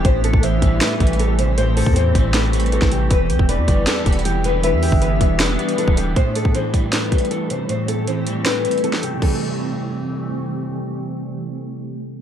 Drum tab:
CC |------------------------------------------------|------------------------------------------------|------------------------------------------------|------------------------------------------------|
HH |x-----x-----x-----x-----x-----x-x-x-x-----x-----|x-----o-----x-----x-----x-----x-x-x-x-----x-----|x-----x-----x-----x-----x-----x-x-x-x-----x-----|x-----o-----x-----x-----x-----x--x--x-----x-----|
SD |------------------------o-----------------------|------------------------o--------------o--------|------------------------o-----------------------|------------------------o-----------------------|
BD |o--------o--------o-----------o-----------------|---------o--------o--------------------o--------|o--------o--------o-----------o-----------------|---------o--------o--------------------o--------|

CC |------------------------------------------------|------------------------------------------------|x-----------------------------------------------|------------------------------------------------|
HH |x-----x-----x-----x-----x-----x-x-x-x-----x-----|x-----x-----x-----x-----x-----x-x-x-x-----x-----|------------------------------------------------|------------------------------------------------|
SD |------------------------o-----------------------|------------------------o--------------o--------|------------------------------------------------|------------------------------------------------|
BD |o--------o--------o-----------o-----------------|------------------------------------------------|o-----------------------------------------------|------------------------------------------------|